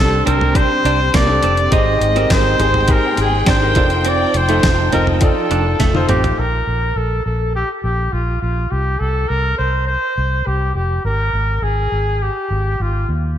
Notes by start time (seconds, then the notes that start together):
Already playing: C2 C3 G3 C4 D4 G4 A4 C5
0.25 C2 C4 D4 G4 A#4 C5, closed hi-hat, floor tom
0.41 floor tom
0.55 C4 D4 G4 C5, kick, closed hi-hat
0.85 C2 D4, closed hi-hat
1.14 C2 A#3 D5, kick, snare, closed hi-hat
1.27 C4 D4 G4 A4
1.43 F1 C4, closed hi-hat
1.57 closed hi-hat
1.71 G#1 G#2 G#3 D#4 G4 G#4 C5 D#5 G5, kick, closed hi-hat
2.01 G#1, closed hi-hat
2.15 C4 D#4 G4 G#4 A#4, closed hi-hat
2.30 G#1 C5, kick, snare, closed hi-hat
2.59 G#1 D#4 G4 G#4 C5, closed hi-hat, floor tom
2.74 floor tom
2.88 D#4 G4 G#4 A#4 C5, kick, closed hi-hat
3.17 G#1 G#4, closed hi-hat
3.46 G#1 D4 C5, kick, snare, closed hi-hat
3.61 D#4 G4 G#4 A#4
3.75 F1 F3 D4 D#4 F4 A4 C5, kick, closed hi-hat
3.90 closed hi-hat
4.05 C4 D5, closed hi-hat
4.34 F1 C5, closed hi-hat
4.49 A3 D#4 F4 A4 C5, closed hi-hat
4.63 F1, kick, snare, closed hi-hat
4.92 F1 C4 D#4 F4 A4 A#4 D#5, closed hi-hat, floor tom
5.07 floor tom
5.21 D#4 F4 A4 D5, kick, closed hi-hat
5.51 F1 D4, closed hi-hat
5.80 F1 A3, kick, snare, closed hi-hat
5.94 D#4 F4 A4 C5, high tom
6.09 A1 C4 G4, closed hi-hat, mid tom
6.24 closed hi-hat, floor tom
6.38 A#1 A#4
6.67 A#1
6.96 A#1 A4
7.26 A#1 A4
7.56 G4
7.83 A#1 G4
8.12 A#1 F4
8.41 A#1 F4
8.71 C2 G4
8.99 C2 A4
9.28 C2 A#4
9.58 C2 C5
9.87 C5
10.18 C2
10.46 C2 G4
10.75 F1 G4
11.05 G#1 A#4
11.33 G#1
11.62 G#1 G#4
11.92 G#1
12.22 G4
12.51 G#1
12.80 G#1 F4
13.09 D#2